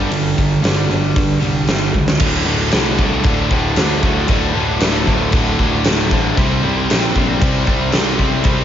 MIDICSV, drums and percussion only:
0, 0, Header, 1, 2, 480
1, 0, Start_track
1, 0, Tempo, 520833
1, 110, Time_signature, 4, 2, 24, 8
1, 7966, End_track
2, 0, Start_track
2, 0, Title_t, "Drums"
2, 107, Note_on_c, 9, 46, 82
2, 200, Note_off_c, 9, 46, 0
2, 351, Note_on_c, 9, 36, 81
2, 355, Note_on_c, 9, 46, 60
2, 443, Note_off_c, 9, 36, 0
2, 447, Note_off_c, 9, 46, 0
2, 589, Note_on_c, 9, 46, 82
2, 600, Note_on_c, 9, 38, 102
2, 682, Note_off_c, 9, 46, 0
2, 692, Note_off_c, 9, 38, 0
2, 839, Note_on_c, 9, 46, 54
2, 931, Note_off_c, 9, 46, 0
2, 1071, Note_on_c, 9, 36, 114
2, 1071, Note_on_c, 9, 46, 84
2, 1163, Note_off_c, 9, 36, 0
2, 1163, Note_off_c, 9, 46, 0
2, 1313, Note_on_c, 9, 46, 50
2, 1405, Note_off_c, 9, 46, 0
2, 1544, Note_on_c, 9, 46, 70
2, 1554, Note_on_c, 9, 38, 103
2, 1636, Note_off_c, 9, 46, 0
2, 1646, Note_off_c, 9, 38, 0
2, 1790, Note_on_c, 9, 36, 60
2, 1882, Note_off_c, 9, 36, 0
2, 1916, Note_on_c, 9, 38, 93
2, 2008, Note_off_c, 9, 38, 0
2, 2024, Note_on_c, 9, 49, 126
2, 2024, Note_on_c, 9, 57, 54
2, 2030, Note_on_c, 9, 36, 107
2, 2116, Note_off_c, 9, 49, 0
2, 2116, Note_off_c, 9, 57, 0
2, 2122, Note_off_c, 9, 36, 0
2, 2502, Note_on_c, 9, 57, 71
2, 2512, Note_on_c, 9, 38, 120
2, 2594, Note_off_c, 9, 57, 0
2, 2604, Note_off_c, 9, 38, 0
2, 2752, Note_on_c, 9, 36, 81
2, 2844, Note_off_c, 9, 36, 0
2, 2983, Note_on_c, 9, 57, 67
2, 2991, Note_on_c, 9, 36, 125
2, 3075, Note_off_c, 9, 57, 0
2, 3083, Note_off_c, 9, 36, 0
2, 3233, Note_on_c, 9, 36, 84
2, 3325, Note_off_c, 9, 36, 0
2, 3467, Note_on_c, 9, 57, 69
2, 3477, Note_on_c, 9, 38, 118
2, 3559, Note_off_c, 9, 57, 0
2, 3569, Note_off_c, 9, 38, 0
2, 3713, Note_on_c, 9, 36, 90
2, 3805, Note_off_c, 9, 36, 0
2, 3944, Note_on_c, 9, 57, 72
2, 3953, Note_on_c, 9, 36, 108
2, 4037, Note_off_c, 9, 57, 0
2, 4045, Note_off_c, 9, 36, 0
2, 4428, Note_on_c, 9, 57, 71
2, 4438, Note_on_c, 9, 38, 114
2, 4520, Note_off_c, 9, 57, 0
2, 4530, Note_off_c, 9, 38, 0
2, 4675, Note_on_c, 9, 36, 86
2, 4767, Note_off_c, 9, 36, 0
2, 4904, Note_on_c, 9, 57, 69
2, 4912, Note_on_c, 9, 36, 127
2, 4996, Note_off_c, 9, 57, 0
2, 5005, Note_off_c, 9, 36, 0
2, 5153, Note_on_c, 9, 36, 81
2, 5246, Note_off_c, 9, 36, 0
2, 5386, Note_on_c, 9, 57, 62
2, 5396, Note_on_c, 9, 38, 112
2, 5478, Note_off_c, 9, 57, 0
2, 5488, Note_off_c, 9, 38, 0
2, 5633, Note_on_c, 9, 36, 85
2, 5725, Note_off_c, 9, 36, 0
2, 5874, Note_on_c, 9, 36, 106
2, 5875, Note_on_c, 9, 57, 63
2, 5967, Note_off_c, 9, 36, 0
2, 5967, Note_off_c, 9, 57, 0
2, 6359, Note_on_c, 9, 57, 63
2, 6369, Note_on_c, 9, 38, 127
2, 6451, Note_off_c, 9, 57, 0
2, 6461, Note_off_c, 9, 38, 0
2, 6595, Note_on_c, 9, 36, 80
2, 6688, Note_off_c, 9, 36, 0
2, 6834, Note_on_c, 9, 36, 126
2, 6837, Note_on_c, 9, 57, 69
2, 6926, Note_off_c, 9, 36, 0
2, 6930, Note_off_c, 9, 57, 0
2, 7071, Note_on_c, 9, 36, 85
2, 7164, Note_off_c, 9, 36, 0
2, 7302, Note_on_c, 9, 57, 61
2, 7312, Note_on_c, 9, 38, 110
2, 7394, Note_off_c, 9, 57, 0
2, 7404, Note_off_c, 9, 38, 0
2, 7548, Note_on_c, 9, 36, 79
2, 7640, Note_off_c, 9, 36, 0
2, 7775, Note_on_c, 9, 57, 66
2, 7787, Note_on_c, 9, 36, 112
2, 7867, Note_off_c, 9, 57, 0
2, 7879, Note_off_c, 9, 36, 0
2, 7966, End_track
0, 0, End_of_file